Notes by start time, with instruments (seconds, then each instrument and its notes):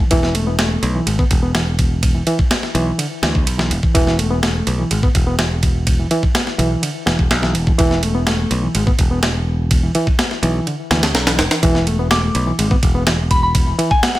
0.11 picked electric bass E1, reed electric piano E3, kick, ride
0.23 snare
0.35 reed electric piano A3, ride
0.47 reed electric piano B3
0.59 reed electric piano A3, snare, ride
0.83 picked electric bass B1, ride
0.95 reed electric piano E3
1.06 picked electric bass G#1, reed electric piano G#3, ride
1.19 reed electric piano B3, kick
1.31 picked electric bass E1, kick, ride
1.43 reed electric piano B3
1.55 reed electric piano E3, snare, ride
1.79 kick, ride
2.03 kick, ride
2.15 reed electric piano E3
2.26 reed electric piano E3, ride
2.39 kick
2.51 reed electric piano B3, snare, ride
2.63 snare
2.75 picked electric bass B1, reed electric piano E3, ride
2.98 reed electric piano D3, ride
3.23 picked electric bass D2, reed electric piano E3, snare, ride
3.35 kick
3.47 picked electric bass B1, ride
3.58 reed electric piano E3, snare
3.71 picked electric bass E1, ride
3.83 kick
3.94 picked electric bass E1, reed electric piano E3, kick, ride
4.07 snare
4.18 reed electric piano A3, ride
4.30 reed electric piano B3
4.42 reed electric piano A3, snare, ride
4.67 picked electric bass B1, ride
4.79 reed electric piano E3
4.91 picked electric bass G#1, reed electric piano G#3, ride
5.03 reed electric piano B3, kick
5.15 picked electric bass E1, kick, ride
5.27 reed electric piano B3
5.39 reed electric piano E3, snare, ride
5.63 kick, ride
5.87 kick, ride
5.99 reed electric piano E3
6.11 reed electric piano E3, ride
6.23 kick
6.35 reed electric piano B3, snare, ride
6.47 snare
6.59 picked electric bass B1, reed electric piano E3, ride
6.82 reed electric piano D3, ride
7.06 picked electric bass E1, reed electric piano E3, snare, ride
7.19 kick
7.31 picked electric bass B1, snare, ride
7.43 reed electric piano E3, snare
7.55 picked electric bass E1, ride
7.67 kick
7.79 picked electric bass E1, reed electric piano E3, kick, ride
7.91 snare
8.03 reed electric piano A3, ride
8.15 reed electric piano B3
8.27 reed electric piano A3, snare, ride
8.51 picked electric bass B1, ride
8.63 reed electric piano E3
8.75 picked electric bass G#1, reed electric piano G#3, ride
8.87 reed electric piano B3, kick
8.99 picked electric bass E1, kick, ride
9.11 reed electric piano B3
9.23 reed electric piano E3, snare, ride
9.71 kick, ride
9.83 reed electric piano E3
9.95 reed electric piano E3, ride
10.07 kick
10.19 reed electric piano B3, snare, ride
10.31 snare
10.43 picked electric bass B1, reed electric piano E3, ride
10.67 reed electric piano D3, ride
10.91 picked electric bass D2, reed electric piano E3, snare, ride
11.03 snare, ride
11.15 picked electric bass B1, snare, ride
11.27 reed electric piano E3, snare, ride
11.39 picked electric bass E1, snare, ride
11.51 snare, ride
11.63 picked electric bass E1, reed electric piano E3, kick, ride
11.75 snare
11.87 reed electric piano A3, ride
11.99 reed electric piano B3
12.11 reed electric piano A3, synth bell D6, snare, ride
12.35 picked electric bass B1, ride
12.47 reed electric piano E3
12.59 picked electric bass G#1, reed electric piano G#3, ride
12.71 reed electric piano B3, kick
12.83 picked electric bass E1, kick, ride
12.95 reed electric piano B3
13.07 reed electric piano E3, snare, ride
13.31 synth bell B5, kick, ride
13.43 synth bell B5
13.55 kick, ride
13.67 reed electric piano E3
13.79 reed electric piano E3, ride
13.91 synth bell G#5, kick
14.03 reed electric piano B3, synth bell F#5, snare, ride
14.15 synth bell F#5, snare